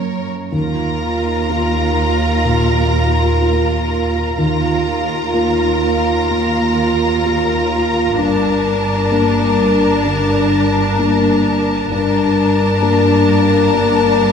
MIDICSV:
0, 0, Header, 1, 8, 480
1, 0, Start_track
1, 0, Tempo, 990099
1, 255, Time_signature, 4, 2, 24, 8
1, 729, Tempo, 956938
1, 3609, Tempo, 927357
1, 7271, End_track
2, 0, Start_track
2, 0, Title_t, "Violin section"
2, 0, Program_c, 0, 48
2, 256, Note_on_c, 0, 82, 42
2, 2151, Note_off_c, 0, 82, 0
2, 2173, Note_on_c, 0, 82, 44
2, 4078, Note_off_c, 0, 82, 0
2, 4101, Note_on_c, 0, 81, 49
2, 6006, Note_off_c, 0, 81, 0
2, 6026, Note_on_c, 0, 81, 55
2, 7271, Note_off_c, 0, 81, 0
2, 7271, End_track
3, 0, Start_track
3, 0, Title_t, "Violin section"
3, 0, Program_c, 1, 48
3, 0, Note_on_c, 1, 70, 42
3, 0, Note_on_c, 1, 73, 42
3, 137, Note_off_c, 1, 73, 0
3, 138, Note_off_c, 1, 70, 0
3, 262, Note_on_c, 1, 70, 47
3, 2154, Note_off_c, 1, 70, 0
3, 2177, Note_on_c, 1, 70, 48
3, 4080, Note_off_c, 1, 70, 0
3, 4094, Note_on_c, 1, 70, 52
3, 6003, Note_off_c, 1, 70, 0
3, 6024, Note_on_c, 1, 70, 56
3, 7271, Note_off_c, 1, 70, 0
3, 7271, End_track
4, 0, Start_track
4, 0, Title_t, "Viola section"
4, 0, Program_c, 2, 48
4, 255, Note_on_c, 2, 65, 45
4, 2151, Note_off_c, 2, 65, 0
4, 2173, Note_on_c, 2, 65, 45
4, 4078, Note_off_c, 2, 65, 0
4, 4100, Note_on_c, 2, 62, 53
4, 6015, Note_off_c, 2, 62, 0
4, 6021, Note_on_c, 2, 62, 56
4, 7271, Note_off_c, 2, 62, 0
4, 7271, End_track
5, 0, Start_track
5, 0, Title_t, "French horn section"
5, 0, Program_c, 3, 60
5, 254, Note_on_c, 3, 58, 43
5, 254, Note_on_c, 3, 65, 41
5, 2150, Note_off_c, 3, 58, 0
5, 2150, Note_off_c, 3, 65, 0
5, 2168, Note_on_c, 3, 65, 43
5, 2169, Note_on_c, 3, 58, 46
5, 4075, Note_off_c, 3, 65, 0
5, 4076, Note_off_c, 3, 58, 0
5, 4100, Note_on_c, 3, 58, 50
5, 4100, Note_on_c, 3, 70, 48
5, 5940, Note_off_c, 3, 58, 0
5, 5940, Note_off_c, 3, 70, 0
5, 6028, Note_on_c, 3, 70, 57
5, 6029, Note_on_c, 3, 58, 53
5, 7271, Note_off_c, 3, 58, 0
5, 7271, Note_off_c, 3, 70, 0
5, 7271, End_track
6, 0, Start_track
6, 0, Title_t, "Felt piano"
6, 0, Program_c, 4, 0
6, 0, Control_c, 4, 64, 127
6, 0, Note_on_c, 4, 58, 27
6, 0, Note_on_c, 4, 61, 27
6, 0, Note_on_c, 4, 70, 30
6, 234, Note_off_c, 4, 58, 0
6, 236, Note_off_c, 4, 61, 0
6, 237, Note_off_c, 4, 70, 0
6, 252, Note_on_c, 4, 39, 40
6, 264, Control_c, 4, 64, 0
6, 346, Control_c, 4, 64, 127
6, 713, Note_off_c, 4, 39, 0
6, 724, Note_on_c, 4, 58, 31
6, 727, Note_on_c, 4, 65, 33
6, 730, Note_on_c, 4, 70, 36
6, 1185, Note_off_c, 4, 58, 0
6, 1186, Note_off_c, 4, 65, 0
6, 1188, Note_off_c, 4, 70, 0
6, 1203, Note_on_c, 4, 46, 33
6, 1688, Note_on_c, 4, 58, 34
6, 1690, Note_on_c, 4, 65, 34
6, 1691, Note_on_c, 4, 70, 35
6, 1976, Note_off_c, 4, 46, 0
6, 2151, Note_off_c, 4, 58, 0
6, 2151, Note_off_c, 4, 65, 0
6, 2152, Note_off_c, 4, 70, 0
6, 2172, Note_on_c, 4, 39, 45
6, 2180, Control_c, 4, 64, 0
6, 2271, Control_c, 4, 64, 127
6, 2638, Note_off_c, 4, 39, 0
6, 2650, Note_on_c, 4, 58, 33
6, 2652, Note_on_c, 4, 65, 34
6, 2654, Note_on_c, 4, 70, 38
6, 3114, Note_off_c, 4, 58, 0
6, 3116, Note_off_c, 4, 65, 0
6, 3117, Note_off_c, 4, 70, 0
6, 3136, Note_on_c, 4, 58, 32
6, 3605, Note_off_c, 4, 58, 0
6, 3613, Note_on_c, 4, 58, 35
6, 3615, Note_on_c, 4, 65, 37
6, 3617, Note_on_c, 4, 70, 41
6, 4077, Note_off_c, 4, 58, 0
6, 4078, Note_off_c, 4, 65, 0
6, 4080, Note_off_c, 4, 70, 0
6, 4097, Note_on_c, 4, 43, 44
6, 4108, Control_c, 4, 64, 0
6, 4199, Control_c, 4, 64, 127
6, 4564, Note_off_c, 4, 43, 0
6, 4575, Note_on_c, 4, 58, 41
6, 4578, Note_on_c, 4, 62, 37
6, 4581, Note_on_c, 4, 70, 42
6, 5039, Note_off_c, 4, 58, 0
6, 5040, Note_off_c, 4, 62, 0
6, 5041, Note_off_c, 4, 70, 0
6, 5063, Note_on_c, 4, 50, 38
6, 5545, Note_on_c, 4, 58, 39
6, 5548, Note_on_c, 4, 62, 41
6, 5548, Note_on_c, 4, 70, 43
6, 5836, Note_off_c, 4, 50, 0
6, 6005, Note_off_c, 4, 58, 0
6, 6006, Note_off_c, 4, 70, 0
6, 6007, Note_off_c, 4, 62, 0
6, 6027, Note_on_c, 4, 43, 54
6, 6034, Control_c, 4, 64, 0
6, 6122, Control_c, 4, 64, 127
6, 6484, Note_off_c, 4, 43, 0
6, 6494, Note_on_c, 4, 58, 42
6, 6497, Note_on_c, 4, 62, 41
6, 6499, Note_on_c, 4, 70, 49
6, 6951, Note_off_c, 4, 58, 0
6, 6952, Note_off_c, 4, 62, 0
6, 6953, Note_off_c, 4, 70, 0
6, 6972, Note_on_c, 4, 58, 45
6, 7271, Note_off_c, 4, 58, 0
6, 7271, End_track
7, 0, Start_track
7, 0, Title_t, "Cello section"
7, 0, Program_c, 5, 48
7, 0, Note_on_c, 5, 42, 43
7, 137, Note_off_c, 5, 42, 0
7, 254, Note_on_c, 5, 39, 46
7, 2150, Note_off_c, 5, 39, 0
7, 2170, Note_on_c, 5, 39, 48
7, 4077, Note_off_c, 5, 39, 0
7, 4097, Note_on_c, 5, 43, 55
7, 6005, Note_off_c, 5, 43, 0
7, 6027, Note_on_c, 5, 43, 64
7, 7271, Note_off_c, 5, 43, 0
7, 7271, End_track
8, 0, Start_track
8, 0, Title_t, "Double bass section"
8, 0, Program_c, 6, 48
8, 251, Note_on_c, 6, 39, 48
8, 2149, Note_off_c, 6, 39, 0
8, 2166, Note_on_c, 6, 39, 48
8, 4074, Note_off_c, 6, 39, 0
8, 4098, Note_on_c, 6, 31, 54
8, 6005, Note_off_c, 6, 31, 0
8, 6019, Note_on_c, 6, 31, 60
8, 7271, Note_off_c, 6, 31, 0
8, 7271, End_track
0, 0, End_of_file